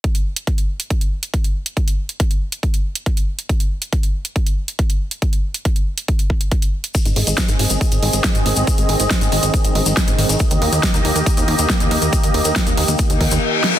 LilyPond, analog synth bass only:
\new Staff \with { instrumentName = "Analog synth bass" } { \clef bass \time 4/4 \key aes \lydian \tempo 4 = 139 r1 | r1 | r1 | r1 |
r16 aes,,16 aes,,16 aes,,16 r16 aes,,16 aes,,16 aes,,16 r16 aes,,16 aes,,16 aes,,16 r16 aes,,16 aes,,16 aes,,16 | r16 aes,,16 aes,,16 aes,,16 r16 aes,,16 aes,,16 aes,,16 r16 aes,,16 aes,,16 aes,,16 r16 aes,,16 aes,,16 aes,,16 | r16 ees,16 ees,16 ees,16 r16 ees,16 ees,16 ees,16 r16 ees,16 ees,16 ees,16 r16 ees,16 ees,16 ees,16 | r16 ees,16 ees,16 ees,16 r16 ees,16 ees,16 ees,16 r16 ees,16 ees,16 ees,16 r4 | }